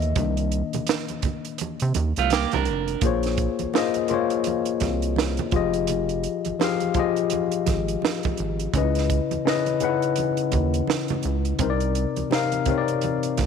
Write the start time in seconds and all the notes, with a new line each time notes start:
Already playing: D#2 E3 B3 D#4 C#5 D#5 E5
0.02 closed hi-hat
0.16 C2 D#3 A#3 D4, kick, closed hi-hat, low conga
0.37 closed hi-hat
0.52 closed hi-hat
0.73 C3, closed hi-hat, high conga
0.87 snare, closed hi-hat
1.08 closed hi-hat, high conga
1.22 kick, closed hi-hat, muted conga, low conga
1.45 closed hi-hat
1.58 closed hi-hat, muted conga, high conga
1.80 C3, closed hi-hat
1.94 D#2, closed hi-hat, muted conga, high conga
2.16 C2 A3 F4, closed hi-hat
2.30 A#3 G4, snare, closed hi-hat, high conga
2.51 C2 D4 A#4, closed hi-hat, high conga, low conga
2.65 F1, closed hi-hat, muted conga
2.88 closed hi-hat
3.01 A#1 A#3 F4 G#4, kick, closed hi-hat, muted conga, low conga
3.05 C5 C#5
3.23 snare, closed hi-hat
3.37 kick, closed hi-hat
3.59 C2, closed hi-hat, high conga
3.73 A#3 F4 G#4 C5, snare, muted conga
3.78 D#5
3.94 closed hi-hat, high conga
4.08 A#3 F4 G#4, closed hi-hat, muted conga, low conga
4.12 C5 C#5
4.30 closed hi-hat
4.44 closed hi-hat, muted conga, high conga
4.65 closed hi-hat
4.80 C2, kick, snare, closed hi-hat, high conga
5.02 closed hi-hat
5.16 snare, muted conga, high conga
5.37 closed hi-hat, high conga, low conga
5.51 F1 F3 F4 G4 G#4, kick, closed hi-hat, muted conga
5.56 D#5
5.73 closed hi-hat
5.87 closed hi-hat, muted conga, low conga
6.09 closed hi-hat
6.23 closed hi-hat
6.45 G#1, closed hi-hat, high conga
6.59 F3 F4 G4 G#4, snare, muted conga
6.64 F5
6.80 closed hi-hat, high conga
6.94 F3 F4 G4, kick, closed hi-hat, low conga
6.98 G#4 D#5
7.16 closed hi-hat
7.30 closed hi-hat, muted conga, high conga
7.52 closed hi-hat
7.66 G#1, kick, snare, closed hi-hat, muted conga, high conga
7.88 closed hi-hat
8.02 snare, high conga
8.23 kick, closed hi-hat, high conga, low conga
8.37 G#1, closed hi-hat
8.59 closed hi-hat
8.74 C#2 C#3 C#4 D#4 B4, kick, closed hi-hat, muted conga, low conga
8.78 D#5
8.83 E4
8.95 snare, closed hi-hat
9.10 kick, closed hi-hat
9.31 D#2, closed hi-hat, high conga
9.45 C#3 C#4 E4 B4, snare
9.49 D#5
9.66 closed hi-hat, high conga
9.80 C#3 C#4 D#4 B4, closed hi-hat, low conga
9.84 F#5
9.89 E4
10.02 closed hi-hat
10.16 closed hi-hat, high conga
10.37 closed hi-hat
10.52 D#2, kick, closed hi-hat, muted conga, high conga
10.74 closed hi-hat
10.87 snare, muted conga, high conga
11.08 closed hi-hat, high conga, low conga
11.23 C#2, closed hi-hat, muted conga
11.45 closed hi-hat
11.59 C2 C3 C4 D#4 A#4, kick, closed hi-hat, muted conga, low conga
11.63 C5
11.70 D5
11.80 closed hi-hat
11.95 closed hi-hat
12.16 D2, closed hi-hat, high conga
12.30 C3 C4 D#4 A#4, snare, muted conga
12.35 F5
12.52 closed hi-hat, high conga
12.65 C3 C4 D#4, kick, closed hi-hat, low conga
12.70 A#4 C#5
12.78 D5
12.88 closed hi-hat
13.01 closed hi-hat, muted conga, high conga
13.23 closed hi-hat
13.37 D2, kick, snare, closed hi-hat, muted conga, high conga